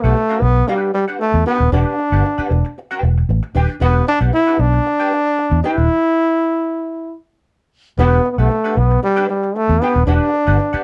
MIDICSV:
0, 0, Header, 1, 6, 480
1, 0, Start_track
1, 0, Key_signature, 1, "minor"
1, 0, Tempo, 521739
1, 1587, Time_signature, 4, 2, 24, 8
1, 9970, End_track
2, 0, Start_track
2, 0, Title_t, "Hollow-body jazz guitar"
2, 0, Program_c, 0, 26
2, 34, Note_on_c, 0, 78, 59
2, 40, Note_on_c, 0, 71, 61
2, 45, Note_on_c, 0, 67, 59
2, 49, Note_on_c, 0, 62, 49
2, 137, Note_off_c, 0, 62, 0
2, 142, Note_off_c, 0, 67, 0
2, 147, Note_off_c, 0, 71, 0
2, 150, Note_off_c, 0, 78, 0
2, 268, Note_on_c, 0, 78, 64
2, 277, Note_on_c, 0, 71, 77
2, 282, Note_on_c, 0, 67, 57
2, 287, Note_on_c, 0, 62, 61
2, 372, Note_off_c, 0, 62, 0
2, 375, Note_off_c, 0, 67, 0
2, 382, Note_off_c, 0, 71, 0
2, 385, Note_off_c, 0, 78, 0
2, 622, Note_on_c, 0, 62, 74
2, 630, Note_on_c, 0, 67, 81
2, 633, Note_on_c, 0, 71, 85
2, 637, Note_on_c, 0, 78, 96
2, 814, Note_off_c, 0, 62, 0
2, 818, Note_off_c, 0, 67, 0
2, 820, Note_off_c, 0, 71, 0
2, 821, Note_off_c, 0, 78, 0
2, 991, Note_on_c, 0, 78, 60
2, 995, Note_on_c, 0, 71, 53
2, 1001, Note_on_c, 0, 67, 55
2, 1005, Note_on_c, 0, 62, 51
2, 1100, Note_off_c, 0, 62, 0
2, 1101, Note_off_c, 0, 67, 0
2, 1106, Note_off_c, 0, 71, 0
2, 1111, Note_off_c, 0, 78, 0
2, 1342, Note_on_c, 0, 62, 77
2, 1349, Note_on_c, 0, 67, 69
2, 1357, Note_on_c, 0, 71, 76
2, 1359, Note_on_c, 0, 79, 78
2, 1468, Note_off_c, 0, 71, 0
2, 1469, Note_off_c, 0, 79, 0
2, 1474, Note_off_c, 0, 67, 0
2, 1534, Note_off_c, 0, 62, 0
2, 1584, Note_on_c, 0, 62, 94
2, 1592, Note_on_c, 0, 67, 84
2, 1596, Note_on_c, 0, 71, 92
2, 1599, Note_on_c, 0, 78, 91
2, 1775, Note_off_c, 0, 62, 0
2, 1779, Note_off_c, 0, 67, 0
2, 1781, Note_off_c, 0, 71, 0
2, 1782, Note_off_c, 0, 78, 0
2, 1951, Note_on_c, 0, 78, 61
2, 1955, Note_on_c, 0, 71, 59
2, 1963, Note_on_c, 0, 67, 57
2, 1967, Note_on_c, 0, 62, 52
2, 2059, Note_off_c, 0, 62, 0
2, 2066, Note_off_c, 0, 67, 0
2, 2067, Note_off_c, 0, 71, 0
2, 2071, Note_off_c, 0, 78, 0
2, 2189, Note_on_c, 0, 78, 84
2, 2196, Note_on_c, 0, 71, 66
2, 2203, Note_on_c, 0, 67, 57
2, 2206, Note_on_c, 0, 62, 64
2, 2295, Note_off_c, 0, 62, 0
2, 2303, Note_off_c, 0, 67, 0
2, 2305, Note_off_c, 0, 71, 0
2, 2307, Note_off_c, 0, 78, 0
2, 2675, Note_on_c, 0, 79, 83
2, 2680, Note_on_c, 0, 71, 81
2, 2684, Note_on_c, 0, 67, 69
2, 2691, Note_on_c, 0, 62, 52
2, 2781, Note_off_c, 0, 62, 0
2, 2782, Note_off_c, 0, 67, 0
2, 2789, Note_off_c, 0, 71, 0
2, 2798, Note_off_c, 0, 79, 0
2, 3263, Note_on_c, 0, 62, 81
2, 3270, Note_on_c, 0, 67, 83
2, 3274, Note_on_c, 0, 71, 87
2, 3281, Note_on_c, 0, 79, 82
2, 3389, Note_off_c, 0, 71, 0
2, 3391, Note_off_c, 0, 79, 0
2, 3394, Note_off_c, 0, 67, 0
2, 3454, Note_off_c, 0, 62, 0
2, 3497, Note_on_c, 0, 62, 78
2, 3508, Note_on_c, 0, 67, 91
2, 3510, Note_on_c, 0, 71, 94
2, 3515, Note_on_c, 0, 78, 104
2, 3691, Note_off_c, 0, 62, 0
2, 3696, Note_off_c, 0, 67, 0
2, 3698, Note_off_c, 0, 71, 0
2, 3700, Note_off_c, 0, 78, 0
2, 3867, Note_on_c, 0, 78, 72
2, 3870, Note_on_c, 0, 71, 66
2, 3877, Note_on_c, 0, 67, 57
2, 3881, Note_on_c, 0, 62, 54
2, 3971, Note_off_c, 0, 62, 0
2, 3975, Note_off_c, 0, 67, 0
2, 3979, Note_off_c, 0, 71, 0
2, 3984, Note_off_c, 0, 78, 0
2, 4112, Note_on_c, 0, 78, 61
2, 4120, Note_on_c, 0, 71, 71
2, 4123, Note_on_c, 0, 67, 61
2, 4128, Note_on_c, 0, 62, 61
2, 4211, Note_off_c, 0, 62, 0
2, 4216, Note_off_c, 0, 67, 0
2, 4218, Note_off_c, 0, 71, 0
2, 4222, Note_off_c, 0, 78, 0
2, 4596, Note_on_c, 0, 79, 83
2, 4604, Note_on_c, 0, 71, 88
2, 4608, Note_on_c, 0, 67, 69
2, 4613, Note_on_c, 0, 62, 69
2, 4704, Note_off_c, 0, 62, 0
2, 4710, Note_off_c, 0, 67, 0
2, 4715, Note_off_c, 0, 71, 0
2, 4726, Note_off_c, 0, 79, 0
2, 5187, Note_on_c, 0, 62, 77
2, 5190, Note_on_c, 0, 67, 91
2, 5199, Note_on_c, 0, 71, 87
2, 5203, Note_on_c, 0, 79, 102
2, 5312, Note_off_c, 0, 71, 0
2, 5313, Note_off_c, 0, 79, 0
2, 5314, Note_off_c, 0, 67, 0
2, 5377, Note_off_c, 0, 62, 0
2, 7348, Note_on_c, 0, 62, 83
2, 7353, Note_on_c, 0, 67, 95
2, 7356, Note_on_c, 0, 71, 106
2, 7364, Note_on_c, 0, 78, 102
2, 7538, Note_off_c, 0, 62, 0
2, 7541, Note_off_c, 0, 67, 0
2, 7542, Note_off_c, 0, 71, 0
2, 7546, Note_off_c, 0, 78, 0
2, 7712, Note_on_c, 0, 78, 65
2, 7718, Note_on_c, 0, 71, 55
2, 7725, Note_on_c, 0, 67, 50
2, 7728, Note_on_c, 0, 62, 53
2, 7810, Note_off_c, 0, 62, 0
2, 7817, Note_off_c, 0, 67, 0
2, 7821, Note_off_c, 0, 71, 0
2, 7824, Note_off_c, 0, 78, 0
2, 7951, Note_on_c, 0, 78, 76
2, 7957, Note_on_c, 0, 71, 75
2, 7962, Note_on_c, 0, 67, 65
2, 7966, Note_on_c, 0, 62, 66
2, 8057, Note_off_c, 0, 62, 0
2, 8064, Note_off_c, 0, 67, 0
2, 8069, Note_off_c, 0, 71, 0
2, 8071, Note_off_c, 0, 78, 0
2, 8430, Note_on_c, 0, 79, 83
2, 8436, Note_on_c, 0, 71, 92
2, 8439, Note_on_c, 0, 67, 80
2, 8443, Note_on_c, 0, 62, 70
2, 8535, Note_off_c, 0, 62, 0
2, 8539, Note_off_c, 0, 67, 0
2, 8545, Note_off_c, 0, 71, 0
2, 8553, Note_off_c, 0, 79, 0
2, 9031, Note_on_c, 0, 62, 75
2, 9038, Note_on_c, 0, 67, 82
2, 9041, Note_on_c, 0, 71, 87
2, 9049, Note_on_c, 0, 79, 84
2, 9151, Note_off_c, 0, 71, 0
2, 9153, Note_off_c, 0, 79, 0
2, 9156, Note_off_c, 0, 67, 0
2, 9221, Note_off_c, 0, 62, 0
2, 9262, Note_on_c, 0, 62, 94
2, 9269, Note_on_c, 0, 67, 84
2, 9272, Note_on_c, 0, 71, 85
2, 9279, Note_on_c, 0, 78, 88
2, 9456, Note_off_c, 0, 62, 0
2, 9460, Note_off_c, 0, 67, 0
2, 9461, Note_off_c, 0, 71, 0
2, 9465, Note_off_c, 0, 78, 0
2, 9629, Note_on_c, 0, 78, 66
2, 9634, Note_on_c, 0, 71, 64
2, 9639, Note_on_c, 0, 67, 67
2, 9643, Note_on_c, 0, 62, 54
2, 9732, Note_off_c, 0, 62, 0
2, 9736, Note_off_c, 0, 67, 0
2, 9740, Note_off_c, 0, 71, 0
2, 9745, Note_off_c, 0, 78, 0
2, 9871, Note_on_c, 0, 78, 74
2, 9879, Note_on_c, 0, 71, 75
2, 9882, Note_on_c, 0, 67, 64
2, 9886, Note_on_c, 0, 62, 65
2, 9970, Note_off_c, 0, 62, 0
2, 9970, Note_off_c, 0, 67, 0
2, 9970, Note_off_c, 0, 71, 0
2, 9970, Note_off_c, 0, 78, 0
2, 9970, End_track
3, 0, Start_track
3, 0, Title_t, "Trombone"
3, 0, Program_c, 1, 57
3, 29, Note_on_c, 1, 57, 93
3, 382, Note_on_c, 1, 59, 97
3, 396, Note_off_c, 1, 57, 0
3, 627, Note_on_c, 1, 55, 85
3, 641, Note_off_c, 1, 59, 0
3, 860, Note_off_c, 1, 55, 0
3, 865, Note_on_c, 1, 55, 84
3, 974, Note_off_c, 1, 55, 0
3, 1106, Note_on_c, 1, 57, 97
3, 1329, Note_off_c, 1, 57, 0
3, 1348, Note_on_c, 1, 59, 91
3, 1571, Note_off_c, 1, 59, 0
3, 1590, Note_on_c, 1, 62, 91
3, 2511, Note_off_c, 1, 62, 0
3, 3515, Note_on_c, 1, 59, 101
3, 3734, Note_off_c, 1, 59, 0
3, 3755, Note_on_c, 1, 62, 110
3, 3861, Note_off_c, 1, 62, 0
3, 3991, Note_on_c, 1, 64, 103
3, 4233, Note_on_c, 1, 62, 103
3, 4247, Note_off_c, 1, 64, 0
3, 5180, Note_off_c, 1, 62, 0
3, 5186, Note_on_c, 1, 64, 100
3, 6591, Note_off_c, 1, 64, 0
3, 7349, Note_on_c, 1, 59, 93
3, 7644, Note_off_c, 1, 59, 0
3, 7644, Note_on_c, 1, 59, 71
3, 7718, Note_on_c, 1, 57, 84
3, 7732, Note_off_c, 1, 59, 0
3, 8075, Note_on_c, 1, 59, 85
3, 8089, Note_off_c, 1, 57, 0
3, 8309, Note_off_c, 1, 59, 0
3, 8315, Note_on_c, 1, 55, 97
3, 8536, Note_off_c, 1, 55, 0
3, 8550, Note_on_c, 1, 55, 87
3, 8792, Note_on_c, 1, 57, 99
3, 8806, Note_off_c, 1, 55, 0
3, 9031, Note_on_c, 1, 59, 90
3, 9045, Note_off_c, 1, 57, 0
3, 9256, Note_off_c, 1, 59, 0
3, 9262, Note_on_c, 1, 62, 94
3, 9970, Note_off_c, 1, 62, 0
3, 9970, End_track
4, 0, Start_track
4, 0, Title_t, "Fingered electric bass"
4, 0, Program_c, 2, 33
4, 36, Note_on_c, 2, 35, 81
4, 119, Note_off_c, 2, 35, 0
4, 387, Note_on_c, 2, 35, 98
4, 564, Note_off_c, 2, 35, 0
4, 1232, Note_on_c, 2, 40, 87
4, 1316, Note_off_c, 2, 40, 0
4, 1474, Note_on_c, 2, 27, 85
4, 1557, Note_off_c, 2, 27, 0
4, 1587, Note_on_c, 2, 28, 106
4, 1680, Note_off_c, 2, 28, 0
4, 1951, Note_on_c, 2, 31, 86
4, 2035, Note_off_c, 2, 31, 0
4, 2307, Note_on_c, 2, 28, 87
4, 2400, Note_off_c, 2, 28, 0
4, 2788, Note_on_c, 2, 28, 79
4, 2964, Note_off_c, 2, 28, 0
4, 3026, Note_on_c, 2, 33, 80
4, 3120, Note_off_c, 2, 33, 0
4, 3270, Note_on_c, 2, 27, 85
4, 3362, Note_off_c, 2, 27, 0
4, 3507, Note_on_c, 2, 28, 102
4, 3684, Note_off_c, 2, 28, 0
4, 3870, Note_on_c, 2, 35, 81
4, 3955, Note_off_c, 2, 35, 0
4, 4225, Note_on_c, 2, 35, 93
4, 4403, Note_off_c, 2, 35, 0
4, 5074, Note_on_c, 2, 40, 100
4, 5157, Note_off_c, 2, 40, 0
4, 5317, Note_on_c, 2, 27, 81
4, 5399, Note_off_c, 2, 27, 0
4, 7346, Note_on_c, 2, 28, 103
4, 7524, Note_off_c, 2, 28, 0
4, 7712, Note_on_c, 2, 35, 84
4, 7797, Note_off_c, 2, 35, 0
4, 8070, Note_on_c, 2, 35, 90
4, 8247, Note_off_c, 2, 35, 0
4, 8918, Note_on_c, 2, 40, 88
4, 9001, Note_off_c, 2, 40, 0
4, 9160, Note_on_c, 2, 27, 93
4, 9243, Note_off_c, 2, 27, 0
4, 9266, Note_on_c, 2, 28, 98
4, 9362, Note_off_c, 2, 28, 0
4, 9637, Note_on_c, 2, 31, 90
4, 9721, Note_off_c, 2, 31, 0
4, 9970, End_track
5, 0, Start_track
5, 0, Title_t, "Muted fingered electric bass strokes"
5, 2194, Note_on_c, 9, 29, 55
5, 2286, Note_off_c, 9, 29, 0
5, 9879, Note_on_c, 9, 29, 56
5, 9970, Note_off_c, 9, 29, 0
5, 9970, End_track
6, 0, Start_track
6, 0, Title_t, "Muted hollow-body jazz guitar strokes"
6, 148, Note_on_c, 9, 29, 41
6, 240, Note_off_c, 9, 29, 0
6, 383, Note_on_c, 9, 29, 35
6, 475, Note_off_c, 9, 29, 0
6, 515, Note_on_c, 9, 29, 49
6, 607, Note_off_c, 9, 29, 0
6, 866, Note_on_c, 9, 29, 42
6, 958, Note_off_c, 9, 29, 0
6, 1111, Note_on_c, 9, 29, 37
6, 1203, Note_off_c, 9, 29, 0
6, 1237, Note_on_c, 9, 29, 41
6, 1329, Note_off_c, 9, 29, 0
6, 1473, Note_on_c, 9, 29, 37
6, 1565, Note_off_c, 9, 29, 0
6, 1827, Note_on_c, 9, 29, 46
6, 1919, Note_off_c, 9, 29, 0
6, 2070, Note_on_c, 9, 29, 36
6, 2162, Note_off_c, 9, 29, 0
6, 2306, Note_on_c, 9, 29, 47
6, 2398, Note_off_c, 9, 29, 0
6, 2436, Note_on_c, 9, 29, 46
6, 2528, Note_off_c, 9, 29, 0
6, 2556, Note_on_c, 9, 29, 34
6, 2648, Note_off_c, 9, 29, 0
6, 2792, Note_on_c, 9, 29, 43
6, 2884, Note_off_c, 9, 29, 0
6, 2922, Note_on_c, 9, 29, 43
6, 3014, Note_off_c, 9, 29, 0
6, 3029, Note_on_c, 9, 29, 46
6, 3121, Note_off_c, 9, 29, 0
6, 3153, Note_on_c, 9, 29, 49
6, 3245, Note_off_c, 9, 29, 0
6, 3395, Note_on_c, 9, 29, 44
6, 3487, Note_off_c, 9, 29, 0
6, 3741, Note_on_c, 9, 29, 45
6, 3833, Note_off_c, 9, 29, 0
6, 3982, Note_on_c, 9, 29, 48
6, 4074, Note_off_c, 9, 29, 0
6, 4222, Note_on_c, 9, 29, 44
6, 4314, Note_off_c, 9, 29, 0
6, 4353, Note_on_c, 9, 29, 46
6, 4445, Note_off_c, 9, 29, 0
6, 4469, Note_on_c, 9, 29, 44
6, 4561, Note_off_c, 9, 29, 0
6, 4715, Note_on_c, 9, 29, 39
6, 4807, Note_off_c, 9, 29, 0
6, 4842, Note_on_c, 9, 29, 48
6, 4934, Note_off_c, 9, 29, 0
6, 4950, Note_on_c, 9, 29, 44
6, 5042, Note_off_c, 9, 29, 0
6, 5072, Note_on_c, 9, 29, 54
6, 5164, Note_off_c, 9, 29, 0
6, 5316, Note_on_c, 9, 29, 49
6, 5408, Note_off_c, 9, 29, 0
6, 7586, Note_on_c, 9, 29, 35
6, 7678, Note_off_c, 9, 29, 0
6, 7821, Note_on_c, 9, 29, 35
6, 7913, Note_off_c, 9, 29, 0
6, 8068, Note_on_c, 9, 29, 36
6, 8160, Note_off_c, 9, 29, 0
6, 8193, Note_on_c, 9, 29, 42
6, 8285, Note_off_c, 9, 29, 0
6, 8305, Note_on_c, 9, 29, 49
6, 8397, Note_off_c, 9, 29, 0
6, 8546, Note_on_c, 9, 29, 37
6, 8638, Note_off_c, 9, 29, 0
6, 8677, Note_on_c, 9, 29, 52
6, 8769, Note_off_c, 9, 29, 0
6, 8790, Note_on_c, 9, 29, 38
6, 8882, Note_off_c, 9, 29, 0
6, 8918, Note_on_c, 9, 29, 44
6, 9010, Note_off_c, 9, 29, 0
6, 9157, Note_on_c, 9, 29, 46
6, 9249, Note_off_c, 9, 29, 0
6, 9509, Note_on_c, 9, 29, 37
6, 9601, Note_off_c, 9, 29, 0
6, 9743, Note_on_c, 9, 29, 43
6, 9835, Note_off_c, 9, 29, 0
6, 9970, End_track
0, 0, End_of_file